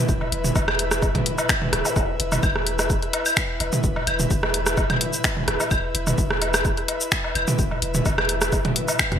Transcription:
0.00 9.19 E4 medium
0.00 9.19 B4 medium
0.00 9.19 E5 medium
0.09 0.19 E1 loud
0.09 kick loud
0.09 cabasa soft
0.21 low woodblock soft
0.32 0.51 E1 loud
0.32 closed hi-hat loud
0.44 mid tom medium
0.44 cabasa medium
0.55 1.11 E1 medium
0.55 kick loud
0.55 cabasa soft
0.55 low woodblock medium
0.68 cross-stick medium
0.68 claves medium
0.79 closed hi-hat loud
0.91 cross-stick medium
0.91 cabasa medium
1.02 kick loud
1.02 cabasa soft
1.02 low woodblock soft
1.15 kick medium
1.15 closed hi-hat soft
1.15 mid tom medium
1.26 closed hi-hat loud
1.38 cabasa soft
1.38 low woodblock medium
1.49 finger snap loud
1.49 kick loud
1.49 cabasa soft
1.49 claves medium
1.62 mid tom medium
1.73 1.83 D1 loud
1.73 cross-stick medium
1.73 closed hi-hat loud
1.85 zap medium
1.85 cabasa medium
1.85 low woodblock soft
1.96 2.06 E1 loud
1.96 kick loud
1.96 cabasa soft
1.96 low woodblock soft
2.20 2.39 E1 loud
2.20 closed hi-hat loud
2.32 mid tom medium
2.32 cabasa soft
2.32 low woodblock medium
2.43 2.98 E1 medium
2.43 kick loud
2.43 cabasa soft
2.43 claves medium
2.56 cross-stick medium
2.67 closed hi-hat medium
2.79 cross-stick medium
2.79 cabasa medium
2.79 low woodblock soft
2.90 kick loud
2.90 cabasa soft
3.02 closed hi-hat soft
3.13 closed hi-hat medium
3.13 low woodblock medium
3.26 cabasa soft
3.26 claves medium
3.37 finger snap loud
3.37 kick loud
3.37 cabasa soft
3.60 3.70 E1 medium
3.60 closed hi-hat medium
3.60 low woodblock soft
3.73 mid tom medium
3.73 cabasa medium
3.84 3.94 E1 loud
3.84 kick loud
3.84 cabasa soft
3.96 low woodblock medium
4.07 4.26 E1 loud
4.07 closed hi-hat medium
4.07 claves medium
4.20 mid tom medium
4.20 cabasa medium
4.31 4.86 E1 medium
4.31 kick loud
4.31 cabasa soft
4.43 cross-stick medium
4.43 low woodblock soft
4.54 closed hi-hat medium
4.66 cross-stick medium
4.66 cabasa medium
4.77 kick loud
4.77 cabasa soft
4.77 low woodblock medium
4.90 closed hi-hat soft
4.90 mid tom medium
4.90 claves medium
5.01 closed hi-hat medium
5.13 cabasa medium
5.24 finger snap loud
5.24 kick loud
5.24 cabasa soft
5.24 low woodblock soft
5.37 mid tom medium
5.48 5.58 E1 medium
5.48 cross-stick medium
5.48 closed hi-hat medium
5.60 cabasa medium
5.60 low woodblock medium
5.71 5.81 E1 loud
5.71 kick loud
5.71 cabasa soft
5.71 claves medium
5.95 6.14 E1 loud
5.95 closed hi-hat medium
6.07 mid tom medium
6.07 cabasa medium
6.07 low woodblock soft
6.18 6.73 E1 medium
6.18 kick loud
6.18 cabasa soft
6.30 cross-stick medium
6.42 closed hi-hat medium
6.42 low woodblock medium
6.54 cross-stick medium
6.54 cabasa medium
6.54 claves medium
6.65 kick loud
6.65 cabasa soft
6.77 closed hi-hat soft
6.88 closed hi-hat medium
6.88 low woodblock soft
7.01 cabasa medium
7.12 finger snap loud
7.12 kick loud
7.12 cabasa soft
7.24 low woodblock medium
7.35 7.45 E1 medium
7.35 closed hi-hat medium
7.35 claves medium
7.48 mid tom medium
7.48 cabasa medium
7.59 7.69 E1 loud
7.59 kick loud
7.59 cabasa soft
7.71 low woodblock soft
7.82 8.01 E1 loud
7.82 closed hi-hat medium
7.95 mid tom medium
7.95 cabasa medium
8.06 8.61 E1 medium
8.06 kick loud
8.06 cabasa soft
8.06 low woodblock medium
8.18 cross-stick medium
8.18 claves medium
8.29 closed hi-hat medium
8.41 cross-stick medium
8.41 cabasa medium
8.52 kick loud
8.52 cabasa soft
8.52 low woodblock soft
8.65 closed hi-hat soft
8.65 mid tom loud
8.76 closed hi-hat medium
8.88 cabasa medium
8.88 low woodblock medium
8.99 finger snap loud
8.99 kick loud
8.99 cabasa soft
8.99 claves medium
9.12 9.19 E2 loud
9.12 cross-stick medium
9.12 closed hi-hat soft
9.12 mid tom medium

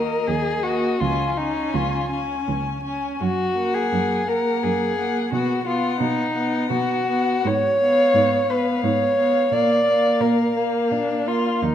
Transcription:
0.00 0.17 D#2 medium
0.00 0.63 A#3 soft
0.00 0.29 A#4 medium
0.00 0.64 D#5 soft
0.27 0.90 D#2 medium
0.27 0.65 G#4 medium
0.63 1.00 A#3 soft
0.63 1.02 F#4 medium
0.63 1.00 D#5 soft
1.00 1.63 C#2 medium
1.00 1.37 C#4 soft
1.00 1.39 F4 medium
1.00 1.36 G#5 soft
1.37 2.09 C#4 soft
1.37 1.76 D#4 medium
1.37 2.09 G#5 soft
1.74 2.36 C#2 medium
1.74 2.11 F4 medium
2.10 2.83 C#4 soft
2.10 2.82 G#5 soft
2.48 3.09 C#2 medium
2.83 3.19 C#4 soft
2.83 3.19 G#5 soft
3.21 3.81 F#2 medium
3.21 3.75 F#4 medium
3.54 4.26 A#3 soft
3.54 4.26 F#5 soft
3.74 4.30 G#4 medium
3.92 4.52 F#2 medium
4.27 4.96 A#3 soft
4.27 4.65 A#4 medium
4.27 4.97 F#5 soft
4.63 5.22 F#2 medium
4.63 5.32 G#4 medium
4.98 5.32 A#3 soft
4.98 5.32 F#5 soft
5.32 5.90 B2 medium
5.32 5.66 B3 soft
5.32 5.66 F#4 medium
5.32 5.65 F#5 soft
5.66 6.34 B3 soft
5.66 6.00 F4 medium
5.66 6.33 F#5 soft
6.00 6.59 B2 medium
6.00 6.70 D#4 medium
6.35 7.07 B3 soft
6.35 7.07 F#5 soft
6.70 7.34 B2 medium
6.70 7.48 F#4 medium
7.07 7.45 B3 soft
7.07 7.44 F#5 soft
7.45 8.04 G#2 medium
7.45 8.51 C#5 medium
7.81 8.48 B3 soft
7.81 8.48 F5 soft
8.14 8.72 G#2 medium
8.49 9.17 B3 soft
8.49 8.84 B4 medium
8.49 9.17 F5 soft
8.83 9.41 G#2 medium
8.83 9.54 C#5 medium
9.18 9.51 B3 soft
9.18 9.51 F5 soft
9.52 10.09 A#2 medium
9.52 9.85 A#3 soft
9.52 10.22 D5 medium
9.52 9.84 F5 soft
9.85 10.55 A#3 soft
9.85 10.53 F5 soft
10.21 10.80 A#2 medium
10.21 10.58 A#4 medium
10.54 10.93 A#3 medium
10.54 11.25 A#3 soft
10.54 11.24 F5 soft
10.91 11.51 A#2 medium
10.91 11.29 D4 medium
11.25 11.61 A#3 soft
11.25 11.64 F4 medium
11.25 11.60 F5 soft
11.62 11.75 D#2 medium
11.62 11.75 D#4 medium

